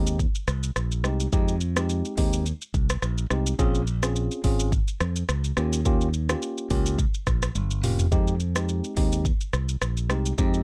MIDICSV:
0, 0, Header, 1, 4, 480
1, 0, Start_track
1, 0, Key_signature, -4, "minor"
1, 0, Tempo, 566038
1, 1124, Time_signature, 4, 2, 24, 8
1, 9014, End_track
2, 0, Start_track
2, 0, Title_t, "Tine electric piano"
2, 0, Program_c, 0, 4
2, 0, Note_on_c, 0, 56, 81
2, 0, Note_on_c, 0, 60, 73
2, 0, Note_on_c, 0, 63, 71
2, 0, Note_on_c, 0, 67, 82
2, 146, Note_off_c, 0, 56, 0
2, 147, Note_off_c, 0, 60, 0
2, 148, Note_off_c, 0, 63, 0
2, 149, Note_off_c, 0, 67, 0
2, 882, Note_on_c, 0, 56, 74
2, 884, Note_on_c, 0, 60, 69
2, 886, Note_on_c, 0, 63, 71
2, 888, Note_on_c, 0, 67, 83
2, 1069, Note_off_c, 0, 56, 0
2, 1070, Note_off_c, 0, 60, 0
2, 1071, Note_off_c, 0, 63, 0
2, 1072, Note_off_c, 0, 67, 0
2, 1123, Note_on_c, 0, 56, 93
2, 1124, Note_on_c, 0, 60, 86
2, 1126, Note_on_c, 0, 63, 85
2, 1128, Note_on_c, 0, 67, 100
2, 1310, Note_off_c, 0, 56, 0
2, 1310, Note_off_c, 0, 60, 0
2, 1312, Note_off_c, 0, 63, 0
2, 1312, Note_off_c, 0, 67, 0
2, 1495, Note_on_c, 0, 56, 76
2, 1496, Note_on_c, 0, 60, 66
2, 1498, Note_on_c, 0, 63, 70
2, 1500, Note_on_c, 0, 67, 89
2, 1818, Note_off_c, 0, 56, 0
2, 1819, Note_off_c, 0, 60, 0
2, 1820, Note_off_c, 0, 63, 0
2, 1820, Note_off_c, 0, 67, 0
2, 1842, Note_on_c, 0, 56, 76
2, 1844, Note_on_c, 0, 60, 72
2, 1846, Note_on_c, 0, 63, 72
2, 1847, Note_on_c, 0, 67, 89
2, 2066, Note_off_c, 0, 56, 0
2, 2067, Note_off_c, 0, 60, 0
2, 2068, Note_off_c, 0, 63, 0
2, 2069, Note_off_c, 0, 67, 0
2, 2803, Note_on_c, 0, 56, 73
2, 2804, Note_on_c, 0, 60, 71
2, 2806, Note_on_c, 0, 63, 69
2, 2808, Note_on_c, 0, 67, 83
2, 2990, Note_off_c, 0, 56, 0
2, 2990, Note_off_c, 0, 60, 0
2, 2991, Note_off_c, 0, 63, 0
2, 2992, Note_off_c, 0, 67, 0
2, 3042, Note_on_c, 0, 60, 98
2, 3044, Note_on_c, 0, 61, 89
2, 3046, Note_on_c, 0, 65, 88
2, 3048, Note_on_c, 0, 68, 107
2, 3229, Note_off_c, 0, 60, 0
2, 3230, Note_off_c, 0, 61, 0
2, 3231, Note_off_c, 0, 65, 0
2, 3232, Note_off_c, 0, 68, 0
2, 3415, Note_on_c, 0, 60, 77
2, 3416, Note_on_c, 0, 61, 70
2, 3418, Note_on_c, 0, 65, 70
2, 3420, Note_on_c, 0, 68, 83
2, 3738, Note_off_c, 0, 60, 0
2, 3739, Note_off_c, 0, 61, 0
2, 3739, Note_off_c, 0, 65, 0
2, 3740, Note_off_c, 0, 68, 0
2, 3762, Note_on_c, 0, 60, 78
2, 3764, Note_on_c, 0, 61, 74
2, 3766, Note_on_c, 0, 65, 74
2, 3767, Note_on_c, 0, 68, 85
2, 3986, Note_off_c, 0, 60, 0
2, 3987, Note_off_c, 0, 61, 0
2, 3988, Note_off_c, 0, 65, 0
2, 3989, Note_off_c, 0, 68, 0
2, 4723, Note_on_c, 0, 58, 77
2, 4725, Note_on_c, 0, 61, 69
2, 4727, Note_on_c, 0, 65, 70
2, 4728, Note_on_c, 0, 67, 88
2, 4910, Note_off_c, 0, 58, 0
2, 4911, Note_off_c, 0, 61, 0
2, 4912, Note_off_c, 0, 65, 0
2, 4912, Note_off_c, 0, 67, 0
2, 4964, Note_on_c, 0, 58, 96
2, 4965, Note_on_c, 0, 61, 84
2, 4967, Note_on_c, 0, 65, 92
2, 4969, Note_on_c, 0, 67, 107
2, 5150, Note_off_c, 0, 58, 0
2, 5151, Note_off_c, 0, 61, 0
2, 5152, Note_off_c, 0, 65, 0
2, 5153, Note_off_c, 0, 67, 0
2, 5336, Note_on_c, 0, 58, 74
2, 5338, Note_on_c, 0, 61, 72
2, 5339, Note_on_c, 0, 65, 70
2, 5341, Note_on_c, 0, 67, 85
2, 5659, Note_off_c, 0, 58, 0
2, 5659, Note_off_c, 0, 61, 0
2, 5660, Note_off_c, 0, 65, 0
2, 5661, Note_off_c, 0, 67, 0
2, 5683, Note_on_c, 0, 58, 80
2, 5685, Note_on_c, 0, 61, 74
2, 5687, Note_on_c, 0, 65, 74
2, 5689, Note_on_c, 0, 67, 91
2, 5907, Note_off_c, 0, 58, 0
2, 5908, Note_off_c, 0, 61, 0
2, 5909, Note_off_c, 0, 65, 0
2, 5909, Note_off_c, 0, 67, 0
2, 6642, Note_on_c, 0, 58, 75
2, 6644, Note_on_c, 0, 61, 66
2, 6645, Note_on_c, 0, 65, 67
2, 6647, Note_on_c, 0, 67, 80
2, 6829, Note_off_c, 0, 58, 0
2, 6830, Note_off_c, 0, 61, 0
2, 6831, Note_off_c, 0, 65, 0
2, 6832, Note_off_c, 0, 67, 0
2, 6882, Note_on_c, 0, 56, 96
2, 6884, Note_on_c, 0, 60, 89
2, 6886, Note_on_c, 0, 63, 88
2, 6888, Note_on_c, 0, 67, 105
2, 7070, Note_off_c, 0, 56, 0
2, 7071, Note_off_c, 0, 60, 0
2, 7071, Note_off_c, 0, 63, 0
2, 7072, Note_off_c, 0, 67, 0
2, 7254, Note_on_c, 0, 56, 74
2, 7255, Note_on_c, 0, 60, 70
2, 7257, Note_on_c, 0, 63, 69
2, 7259, Note_on_c, 0, 67, 82
2, 7577, Note_off_c, 0, 56, 0
2, 7578, Note_off_c, 0, 60, 0
2, 7579, Note_off_c, 0, 63, 0
2, 7580, Note_off_c, 0, 67, 0
2, 7602, Note_on_c, 0, 56, 76
2, 7604, Note_on_c, 0, 60, 73
2, 7605, Note_on_c, 0, 63, 72
2, 7607, Note_on_c, 0, 67, 83
2, 7826, Note_off_c, 0, 56, 0
2, 7827, Note_off_c, 0, 60, 0
2, 7828, Note_off_c, 0, 63, 0
2, 7829, Note_off_c, 0, 67, 0
2, 8563, Note_on_c, 0, 56, 76
2, 8564, Note_on_c, 0, 60, 69
2, 8566, Note_on_c, 0, 63, 71
2, 8568, Note_on_c, 0, 67, 83
2, 8750, Note_off_c, 0, 56, 0
2, 8750, Note_off_c, 0, 60, 0
2, 8751, Note_off_c, 0, 63, 0
2, 8752, Note_off_c, 0, 67, 0
2, 8802, Note_on_c, 0, 56, 93
2, 8804, Note_on_c, 0, 60, 90
2, 8806, Note_on_c, 0, 63, 88
2, 8807, Note_on_c, 0, 67, 106
2, 8990, Note_off_c, 0, 56, 0
2, 8990, Note_off_c, 0, 60, 0
2, 8991, Note_off_c, 0, 63, 0
2, 8992, Note_off_c, 0, 67, 0
2, 9014, End_track
3, 0, Start_track
3, 0, Title_t, "Fingered electric bass"
3, 0, Program_c, 1, 33
3, 0, Note_on_c, 1, 39, 91
3, 210, Note_off_c, 1, 39, 0
3, 405, Note_on_c, 1, 36, 93
3, 588, Note_off_c, 1, 36, 0
3, 645, Note_on_c, 1, 34, 94
3, 886, Note_off_c, 1, 34, 0
3, 886, Note_on_c, 1, 36, 93
3, 1068, Note_off_c, 1, 36, 0
3, 1125, Note_on_c, 1, 41, 105
3, 1706, Note_off_c, 1, 41, 0
3, 1848, Note_on_c, 1, 39, 94
3, 2130, Note_off_c, 1, 39, 0
3, 2325, Note_on_c, 1, 36, 98
3, 2508, Note_off_c, 1, 36, 0
3, 2565, Note_on_c, 1, 34, 99
3, 2748, Note_off_c, 1, 34, 0
3, 2804, Note_on_c, 1, 36, 95
3, 2988, Note_off_c, 1, 36, 0
3, 3045, Note_on_c, 1, 34, 116
3, 3626, Note_off_c, 1, 34, 0
3, 3768, Note_on_c, 1, 32, 94
3, 4050, Note_off_c, 1, 32, 0
3, 4245, Note_on_c, 1, 41, 101
3, 4428, Note_off_c, 1, 41, 0
3, 4485, Note_on_c, 1, 37, 96
3, 4668, Note_off_c, 1, 37, 0
3, 4725, Note_on_c, 1, 39, 106
3, 5375, Note_off_c, 1, 39, 0
3, 5687, Note_on_c, 1, 37, 96
3, 5970, Note_off_c, 1, 37, 0
3, 6164, Note_on_c, 1, 34, 96
3, 6347, Note_off_c, 1, 34, 0
3, 6405, Note_on_c, 1, 31, 93
3, 6645, Note_off_c, 1, 31, 0
3, 6645, Note_on_c, 1, 29, 91
3, 6828, Note_off_c, 1, 29, 0
3, 6884, Note_on_c, 1, 41, 107
3, 7466, Note_off_c, 1, 41, 0
3, 7607, Note_on_c, 1, 39, 91
3, 7890, Note_off_c, 1, 39, 0
3, 8085, Note_on_c, 1, 36, 98
3, 8268, Note_off_c, 1, 36, 0
3, 8325, Note_on_c, 1, 34, 92
3, 8565, Note_off_c, 1, 34, 0
3, 8565, Note_on_c, 1, 36, 93
3, 8748, Note_off_c, 1, 36, 0
3, 8804, Note_on_c, 1, 41, 109
3, 9014, Note_off_c, 1, 41, 0
3, 9014, End_track
4, 0, Start_track
4, 0, Title_t, "Drums"
4, 57, Note_on_c, 9, 82, 87
4, 142, Note_off_c, 9, 82, 0
4, 164, Note_on_c, 9, 36, 97
4, 166, Note_on_c, 9, 82, 66
4, 249, Note_off_c, 9, 36, 0
4, 251, Note_off_c, 9, 82, 0
4, 297, Note_on_c, 9, 82, 59
4, 382, Note_off_c, 9, 82, 0
4, 404, Note_on_c, 9, 37, 93
4, 404, Note_on_c, 9, 82, 56
4, 489, Note_off_c, 9, 37, 0
4, 489, Note_off_c, 9, 82, 0
4, 536, Note_on_c, 9, 82, 87
4, 621, Note_off_c, 9, 82, 0
4, 645, Note_on_c, 9, 37, 93
4, 646, Note_on_c, 9, 82, 78
4, 729, Note_off_c, 9, 37, 0
4, 731, Note_off_c, 9, 82, 0
4, 776, Note_on_c, 9, 82, 59
4, 861, Note_off_c, 9, 82, 0
4, 882, Note_on_c, 9, 37, 94
4, 886, Note_on_c, 9, 82, 57
4, 967, Note_off_c, 9, 37, 0
4, 970, Note_off_c, 9, 82, 0
4, 1018, Note_on_c, 9, 82, 96
4, 1103, Note_off_c, 9, 82, 0
4, 1125, Note_on_c, 9, 36, 114
4, 1125, Note_on_c, 9, 82, 73
4, 1210, Note_off_c, 9, 36, 0
4, 1210, Note_off_c, 9, 82, 0
4, 1256, Note_on_c, 9, 82, 58
4, 1341, Note_off_c, 9, 82, 0
4, 1362, Note_on_c, 9, 82, 61
4, 1447, Note_off_c, 9, 82, 0
4, 1497, Note_on_c, 9, 37, 118
4, 1497, Note_on_c, 9, 82, 100
4, 1582, Note_off_c, 9, 37, 0
4, 1582, Note_off_c, 9, 82, 0
4, 1607, Note_on_c, 9, 82, 76
4, 1692, Note_off_c, 9, 82, 0
4, 1738, Note_on_c, 9, 82, 53
4, 1823, Note_off_c, 9, 82, 0
4, 1844, Note_on_c, 9, 46, 61
4, 1844, Note_on_c, 9, 82, 44
4, 1848, Note_on_c, 9, 36, 88
4, 1929, Note_off_c, 9, 46, 0
4, 1929, Note_off_c, 9, 82, 0
4, 1932, Note_off_c, 9, 36, 0
4, 1977, Note_on_c, 9, 82, 89
4, 2062, Note_off_c, 9, 82, 0
4, 2086, Note_on_c, 9, 82, 66
4, 2171, Note_off_c, 9, 82, 0
4, 2218, Note_on_c, 9, 82, 60
4, 2303, Note_off_c, 9, 82, 0
4, 2324, Note_on_c, 9, 36, 103
4, 2325, Note_on_c, 9, 82, 57
4, 2409, Note_off_c, 9, 36, 0
4, 2410, Note_off_c, 9, 82, 0
4, 2456, Note_on_c, 9, 82, 90
4, 2459, Note_on_c, 9, 37, 99
4, 2541, Note_off_c, 9, 82, 0
4, 2543, Note_off_c, 9, 37, 0
4, 2564, Note_on_c, 9, 37, 94
4, 2566, Note_on_c, 9, 82, 75
4, 2649, Note_off_c, 9, 37, 0
4, 2651, Note_off_c, 9, 82, 0
4, 2696, Note_on_c, 9, 82, 58
4, 2781, Note_off_c, 9, 82, 0
4, 2802, Note_on_c, 9, 37, 93
4, 2806, Note_on_c, 9, 82, 56
4, 2887, Note_off_c, 9, 37, 0
4, 2891, Note_off_c, 9, 82, 0
4, 2938, Note_on_c, 9, 82, 98
4, 3023, Note_off_c, 9, 82, 0
4, 3045, Note_on_c, 9, 36, 118
4, 3045, Note_on_c, 9, 82, 80
4, 3130, Note_off_c, 9, 36, 0
4, 3130, Note_off_c, 9, 82, 0
4, 3176, Note_on_c, 9, 82, 57
4, 3261, Note_off_c, 9, 82, 0
4, 3282, Note_on_c, 9, 82, 57
4, 3367, Note_off_c, 9, 82, 0
4, 3416, Note_on_c, 9, 82, 99
4, 3417, Note_on_c, 9, 37, 118
4, 3501, Note_off_c, 9, 82, 0
4, 3502, Note_off_c, 9, 37, 0
4, 3527, Note_on_c, 9, 82, 75
4, 3612, Note_off_c, 9, 82, 0
4, 3658, Note_on_c, 9, 82, 51
4, 3743, Note_off_c, 9, 82, 0
4, 3764, Note_on_c, 9, 46, 59
4, 3764, Note_on_c, 9, 82, 45
4, 3768, Note_on_c, 9, 36, 94
4, 3849, Note_off_c, 9, 46, 0
4, 3849, Note_off_c, 9, 82, 0
4, 3852, Note_off_c, 9, 36, 0
4, 3897, Note_on_c, 9, 82, 89
4, 3982, Note_off_c, 9, 82, 0
4, 4004, Note_on_c, 9, 36, 105
4, 4006, Note_on_c, 9, 82, 62
4, 4089, Note_off_c, 9, 36, 0
4, 4091, Note_off_c, 9, 82, 0
4, 4137, Note_on_c, 9, 82, 60
4, 4222, Note_off_c, 9, 82, 0
4, 4244, Note_on_c, 9, 37, 96
4, 4244, Note_on_c, 9, 82, 58
4, 4329, Note_off_c, 9, 37, 0
4, 4329, Note_off_c, 9, 82, 0
4, 4375, Note_on_c, 9, 82, 93
4, 4460, Note_off_c, 9, 82, 0
4, 4484, Note_on_c, 9, 37, 98
4, 4485, Note_on_c, 9, 82, 77
4, 4568, Note_off_c, 9, 37, 0
4, 4570, Note_off_c, 9, 82, 0
4, 4615, Note_on_c, 9, 82, 56
4, 4700, Note_off_c, 9, 82, 0
4, 4722, Note_on_c, 9, 37, 97
4, 4725, Note_on_c, 9, 82, 57
4, 4807, Note_off_c, 9, 37, 0
4, 4810, Note_off_c, 9, 82, 0
4, 4858, Note_on_c, 9, 82, 96
4, 4943, Note_off_c, 9, 82, 0
4, 4964, Note_on_c, 9, 82, 75
4, 4965, Note_on_c, 9, 36, 118
4, 5049, Note_off_c, 9, 82, 0
4, 5050, Note_off_c, 9, 36, 0
4, 5096, Note_on_c, 9, 82, 57
4, 5181, Note_off_c, 9, 82, 0
4, 5203, Note_on_c, 9, 82, 59
4, 5287, Note_off_c, 9, 82, 0
4, 5337, Note_on_c, 9, 37, 119
4, 5337, Note_on_c, 9, 82, 95
4, 5422, Note_off_c, 9, 37, 0
4, 5422, Note_off_c, 9, 82, 0
4, 5447, Note_on_c, 9, 82, 76
4, 5532, Note_off_c, 9, 82, 0
4, 5578, Note_on_c, 9, 82, 54
4, 5663, Note_off_c, 9, 82, 0
4, 5684, Note_on_c, 9, 46, 57
4, 5684, Note_on_c, 9, 82, 43
4, 5687, Note_on_c, 9, 36, 93
4, 5769, Note_off_c, 9, 46, 0
4, 5769, Note_off_c, 9, 82, 0
4, 5772, Note_off_c, 9, 36, 0
4, 5817, Note_on_c, 9, 82, 87
4, 5902, Note_off_c, 9, 82, 0
4, 5924, Note_on_c, 9, 36, 96
4, 5926, Note_on_c, 9, 82, 66
4, 6008, Note_off_c, 9, 36, 0
4, 6011, Note_off_c, 9, 82, 0
4, 6057, Note_on_c, 9, 82, 56
4, 6142, Note_off_c, 9, 82, 0
4, 6164, Note_on_c, 9, 36, 98
4, 6164, Note_on_c, 9, 37, 95
4, 6164, Note_on_c, 9, 82, 58
4, 6249, Note_off_c, 9, 36, 0
4, 6249, Note_off_c, 9, 37, 0
4, 6249, Note_off_c, 9, 82, 0
4, 6295, Note_on_c, 9, 82, 85
4, 6298, Note_on_c, 9, 37, 99
4, 6380, Note_off_c, 9, 82, 0
4, 6383, Note_off_c, 9, 37, 0
4, 6404, Note_on_c, 9, 48, 62
4, 6405, Note_on_c, 9, 82, 80
4, 6489, Note_off_c, 9, 48, 0
4, 6490, Note_off_c, 9, 82, 0
4, 6535, Note_on_c, 9, 82, 57
4, 6620, Note_off_c, 9, 82, 0
4, 6645, Note_on_c, 9, 45, 99
4, 6645, Note_on_c, 9, 46, 80
4, 6645, Note_on_c, 9, 82, 57
4, 6729, Note_off_c, 9, 45, 0
4, 6730, Note_off_c, 9, 46, 0
4, 6730, Note_off_c, 9, 82, 0
4, 6777, Note_on_c, 9, 43, 93
4, 6778, Note_on_c, 9, 82, 97
4, 6861, Note_off_c, 9, 43, 0
4, 6863, Note_off_c, 9, 82, 0
4, 6884, Note_on_c, 9, 36, 117
4, 6885, Note_on_c, 9, 82, 78
4, 6969, Note_off_c, 9, 36, 0
4, 6969, Note_off_c, 9, 82, 0
4, 7016, Note_on_c, 9, 82, 60
4, 7101, Note_off_c, 9, 82, 0
4, 7122, Note_on_c, 9, 82, 61
4, 7207, Note_off_c, 9, 82, 0
4, 7257, Note_on_c, 9, 37, 115
4, 7257, Note_on_c, 9, 82, 99
4, 7341, Note_off_c, 9, 82, 0
4, 7342, Note_off_c, 9, 37, 0
4, 7366, Note_on_c, 9, 82, 73
4, 7451, Note_off_c, 9, 82, 0
4, 7497, Note_on_c, 9, 82, 55
4, 7582, Note_off_c, 9, 82, 0
4, 7604, Note_on_c, 9, 46, 63
4, 7604, Note_on_c, 9, 82, 44
4, 7607, Note_on_c, 9, 36, 96
4, 7688, Note_off_c, 9, 46, 0
4, 7688, Note_off_c, 9, 82, 0
4, 7692, Note_off_c, 9, 36, 0
4, 7737, Note_on_c, 9, 82, 89
4, 7822, Note_off_c, 9, 82, 0
4, 7843, Note_on_c, 9, 36, 97
4, 7846, Note_on_c, 9, 82, 64
4, 7928, Note_off_c, 9, 36, 0
4, 7931, Note_off_c, 9, 82, 0
4, 7977, Note_on_c, 9, 82, 61
4, 8062, Note_off_c, 9, 82, 0
4, 8084, Note_on_c, 9, 37, 92
4, 8084, Note_on_c, 9, 82, 57
4, 8169, Note_off_c, 9, 37, 0
4, 8169, Note_off_c, 9, 82, 0
4, 8216, Note_on_c, 9, 82, 93
4, 8300, Note_off_c, 9, 82, 0
4, 8324, Note_on_c, 9, 37, 96
4, 8325, Note_on_c, 9, 82, 80
4, 8409, Note_off_c, 9, 37, 0
4, 8410, Note_off_c, 9, 82, 0
4, 8456, Note_on_c, 9, 82, 58
4, 8541, Note_off_c, 9, 82, 0
4, 8562, Note_on_c, 9, 37, 96
4, 8565, Note_on_c, 9, 82, 58
4, 8646, Note_off_c, 9, 37, 0
4, 8650, Note_off_c, 9, 82, 0
4, 8698, Note_on_c, 9, 82, 94
4, 8782, Note_off_c, 9, 82, 0
4, 8804, Note_on_c, 9, 82, 77
4, 8805, Note_on_c, 9, 36, 115
4, 8889, Note_off_c, 9, 36, 0
4, 8889, Note_off_c, 9, 82, 0
4, 8936, Note_on_c, 9, 82, 56
4, 9014, Note_off_c, 9, 82, 0
4, 9014, End_track
0, 0, End_of_file